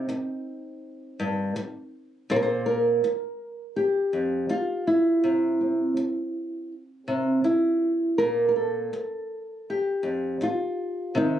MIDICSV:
0, 0, Header, 1, 3, 480
1, 0, Start_track
1, 0, Tempo, 735294
1, 1501, Time_signature, 4, 2, 24, 8
1, 4381, Tempo, 741656
1, 7412, End_track
2, 0, Start_track
2, 0, Title_t, "Nylon-string guitar"
2, 0, Program_c, 0, 24
2, 0, Note_on_c, 0, 60, 40
2, 0, Note_on_c, 0, 63, 74
2, 780, Note_on_c, 0, 43, 59
2, 1011, Note_off_c, 0, 43, 0
2, 1476, Note_off_c, 0, 60, 0
2, 1500, Note_off_c, 0, 63, 0
2, 1500, Note_on_c, 0, 46, 76
2, 1510, Note_on_c, 0, 72, 98
2, 1539, Note_off_c, 0, 72, 0
2, 1542, Note_on_c, 0, 70, 94
2, 1580, Note_off_c, 0, 70, 0
2, 1583, Note_on_c, 0, 72, 105
2, 1733, Note_off_c, 0, 72, 0
2, 1736, Note_on_c, 0, 70, 85
2, 1978, Note_off_c, 0, 46, 0
2, 2457, Note_on_c, 0, 67, 85
2, 2694, Note_off_c, 0, 70, 0
2, 2696, Note_on_c, 0, 41, 51
2, 2926, Note_off_c, 0, 41, 0
2, 2940, Note_on_c, 0, 65, 79
2, 3177, Note_off_c, 0, 67, 0
2, 3181, Note_on_c, 0, 64, 83
2, 3418, Note_on_c, 0, 48, 68
2, 3419, Note_off_c, 0, 65, 0
2, 3661, Note_on_c, 0, 60, 40
2, 3889, Note_off_c, 0, 48, 0
2, 4381, Note_off_c, 0, 64, 0
2, 4617, Note_on_c, 0, 48, 57
2, 4848, Note_off_c, 0, 48, 0
2, 4856, Note_on_c, 0, 64, 68
2, 5313, Note_off_c, 0, 60, 0
2, 5333, Note_on_c, 0, 70, 95
2, 5338, Note_off_c, 0, 64, 0
2, 5341, Note_on_c, 0, 46, 64
2, 5522, Note_off_c, 0, 70, 0
2, 5530, Note_on_c, 0, 70, 62
2, 5574, Note_off_c, 0, 70, 0
2, 5577, Note_on_c, 0, 69, 77
2, 5812, Note_off_c, 0, 46, 0
2, 6314, Note_on_c, 0, 67, 75
2, 6529, Note_on_c, 0, 41, 54
2, 6540, Note_off_c, 0, 69, 0
2, 6766, Note_off_c, 0, 41, 0
2, 6788, Note_on_c, 0, 65, 71
2, 7253, Note_on_c, 0, 48, 71
2, 7257, Note_on_c, 0, 51, 47
2, 7263, Note_off_c, 0, 65, 0
2, 7266, Note_off_c, 0, 67, 0
2, 7270, Note_on_c, 0, 63, 83
2, 7412, Note_off_c, 0, 48, 0
2, 7412, Note_off_c, 0, 51, 0
2, 7412, Note_off_c, 0, 63, 0
2, 7412, End_track
3, 0, Start_track
3, 0, Title_t, "Muted nylon-string guitar strokes"
3, 56, Note_on_c, 9, 29, 58
3, 121, Note_off_c, 9, 29, 0
3, 1018, Note_on_c, 9, 29, 69
3, 1083, Note_off_c, 9, 29, 0
3, 1984, Note_on_c, 9, 29, 71
3, 2050, Note_off_c, 9, 29, 0
3, 2933, Note_on_c, 9, 29, 57
3, 2999, Note_off_c, 9, 29, 0
3, 3896, Note_on_c, 9, 29, 64
3, 3962, Note_off_c, 9, 29, 0
3, 4854, Note_on_c, 9, 29, 59
3, 4919, Note_off_c, 9, 29, 0
3, 5817, Note_on_c, 9, 29, 66
3, 5882, Note_off_c, 9, 29, 0
3, 6774, Note_on_c, 9, 29, 54
3, 6839, Note_off_c, 9, 29, 0
3, 7412, End_track
0, 0, End_of_file